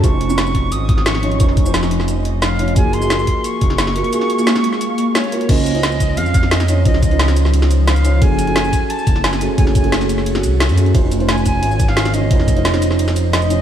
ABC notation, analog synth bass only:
X:1
M:4/4
L:1/16
Q:1/4=176
K:Db
V:1 name="Analog synth bass" clef=bass
F,,,8 A,,,8 | F,,,8 F,,,8 | G,,,6 z4 G,,,4- G,,, z | z16 |
D,,8 F,,8 | D,,8 D,,8 | G,,,6 z4 G,,,4- G,,, z | G,,,8- G,,,2 C,,3 G,,3 |
F,,,8 A,,,8 | F,,,8 F,,,8 |]